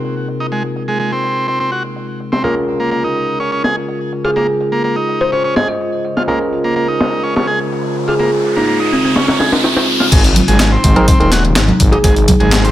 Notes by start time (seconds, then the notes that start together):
Already playing: C3 G#3 A#3 C4 D#4 F4 G#4 A#4
0.04 closed hi-hat
0.28 closed hi-hat
0.40 D#4
0.52 G#3, closed hi-hat
0.64 closed hi-hat
0.76 closed hi-hat
0.88 G#3
1.00 G#3, closed hi-hat
1.12 C4, closed hi-hat
1.24 closed hi-hat
1.48 C4, closed hi-hat
1.60 C4
1.72 F#4, closed hi-hat
1.84 closed hi-hat
1.96 closed hi-hat
2.20 closed hi-hat
2.32 C4, snare
2.44 C#3 A#3 C#4 F4 G#4 A#4, closed hi-hat
2.57 closed hi-hat
2.68 closed hi-hat
2.80 A#3, closed hi-hat
2.91 A#3, closed hi-hat
3.04 D#4
3.16 closed hi-hat
3.40 C#4, closed hi-hat
3.52 C#4
3.64 G#4, snare, closed hi-hat
3.88 closed hi-hat
4.12 closed hi-hat
4.24 F4 G#4
4.36 A#3 G#4, closed hi-hat
4.49 closed hi-hat
4.61 closed hi-hat
4.72 A#3
4.84 A#3, closed hi-hat
4.96 D#4, closed hi-hat
5.09 closed hi-hat
5.21 C5
5.32 C#4 C5, closed hi-hat
5.44 C#4
5.56 G#4 D#5, snare, closed hi-hat
5.68 D#5
5.81 closed hi-hat
6.05 closed hi-hat
6.17 F4, snare
6.28 A#3 C#4 F4 G#4 A#4 C5, closed hi-hat, riser
6.41 closed hi-hat
6.53 closed hi-hat
6.64 A#3, closed hi-hat
6.76 A#3, closed hi-hat
6.88 D#4
7.01 snare, closed hi-hat
7.23 C#4, closed hi-hat
7.36 C#4, snare, closed hi-hat
7.47 G#4
7.61 closed hi-hat
7.72 closed hi-hat
7.96 closed hi-hat
8.08 F4 G#4
8.19 A#3 G#4, closed hi-hat
8.33 closed hi-hat
8.44 closed hi-hat
8.56 A#3 D#4
8.67 A#3, closed hi-hat
8.80 D#4, closed hi-hat
8.92 C4, closed hi-hat
9.05 C4
9.16 C#4, snare, closed hi-hat
9.28 C#4, snare, closed hi-hat
9.39 G#4, snare, closed hi-hat
9.52 snare, closed hi-hat
9.64 snare, closed hi-hat
9.77 snare, closed hi-hat
9.88 closed hi-hat
10.00 F4, snare
10.12 G#1 C3 G#3 A#3 D#4, kick, closed hi-hat, crash
10.24 closed hi-hat
10.36 closed hi-hat, high conga
10.48 G#1 G#3, closed hi-hat
10.60 G#3, snare, clap, closed hi-hat
10.72 C4
10.84 G#1, kick, closed hi-hat, low conga
10.96 C4 D#4 G#4 A#4, closed hi-hat, high conga
11.08 C4, kick, closed hi-hat
11.20 D#1 C4 D#4 G#4 A#4, closed hi-hat
11.32 F#4, snare, closed hi-hat
11.45 closed hi-hat
11.56 G#1, snare, clap, closed hi-hat
11.68 closed hi-hat, high conga
11.80 G#1, kick, closed hi-hat
11.92 D#4 G#4, closed hi-hat
12.04 G#1 G#3 G#4, kick, closed hi-hat
12.16 closed hi-hat
12.28 kick, closed hi-hat, high conga
12.40 G#1 G#3, closed hi-hat
12.52 G#3, snare, clap, closed hi-hat
12.64 C4, closed hi-hat